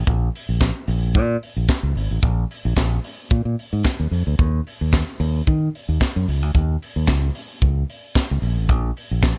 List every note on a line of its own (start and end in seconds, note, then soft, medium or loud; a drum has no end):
0.07 0.28 A#1 loud
0.07 kick loud
0.07 closed hi-hat medium
0.35 open hi-hat medium
0.49 0.70 A#1 medium
0.60 kick loud
0.60 snare loud
0.60 clap medium
0.60 closed hi-hat medium
0.88 1.16 A#1 medium
0.88 open hi-hat medium
1.14 1.36 A#2 loud
1.14 kick loud
1.14 closed hi-hat medium
1.43 open hi-hat medium
1.56 1.66 A#1 medium
1.68 kick loud
1.68 snare loud
1.68 clap medium
1.68 closed hi-hat medium
1.83 1.93 C#2 medium
1.95 2.07 G#1 medium
1.95 open hi-hat medium
2.11 2.20 A1 medium
2.23 2.44 A#1 loud
2.23 kick loud
2.23 closed hi-hat medium
2.51 open hi-hat medium
2.65 2.74 A#1 medium
2.76 2.98 A#1 medium
2.76 kick loud
2.76 snare loud
2.76 clap medium
2.76 closed hi-hat medium
3.04 open hi-hat medium
3.30 3.43 A#2 loud
3.30 kick loud
3.30 closed hi-hat medium
3.45 3.55 A#2 medium
3.59 open hi-hat medium
3.73 3.82 G#2 medium
3.83 kick loud
3.83 snare loud
3.83 clap medium
3.83 closed hi-hat medium
4.00 4.09 D#2 medium
4.11 4.23 F2 medium
4.11 open hi-hat medium
4.27 4.36 D2 medium
4.39 4.59 D#2 medium
4.39 kick loud
4.39 closed hi-hat medium
4.67 open hi-hat medium
4.81 5.02 D#2 medium
4.92 kick loud
4.92 snare loud
4.92 clap medium
4.92 closed hi-hat medium
5.20 5.40 D#2 medium
5.20 open hi-hat medium
5.47 5.68 D#3 medium
5.47 kick medium
5.47 closed hi-hat medium
5.75 open hi-hat medium
5.89 5.98 D#2 medium
6.00 kick loud
6.00 snare loud
6.00 clap medium
6.00 closed hi-hat medium
6.16 6.25 F#2 medium
6.28 6.42 C#2 medium
6.28 open hi-hat medium
6.42 6.52 D2 medium
6.55 6.75 D#2 loud
6.55 kick loud
6.55 closed hi-hat medium
6.82 open hi-hat medium
6.96 7.05 D#2 medium
7.07 7.29 C#2 loud
7.07 kick loud
7.07 snare loud
7.07 clap medium
7.07 closed hi-hat medium
7.35 open hi-hat medium
7.61 7.83 C#2 medium
7.61 kick loud
7.61 closed hi-hat medium
7.90 open hi-hat medium
8.14 kick loud
8.14 snare loud
8.14 clap medium
8.14 closed hi-hat medium
8.31 8.40 C#2 medium
8.42 8.57 A#1 medium
8.42 open hi-hat medium
8.57 8.69 A1 medium
8.69 8.90 A#1 medium
8.69 kick loud
8.69 closed hi-hat medium
8.97 open hi-hat medium
9.11 9.32 A#1 medium
9.22 kick loud
9.22 snare loud
9.22 clap medium
9.22 closed hi-hat medium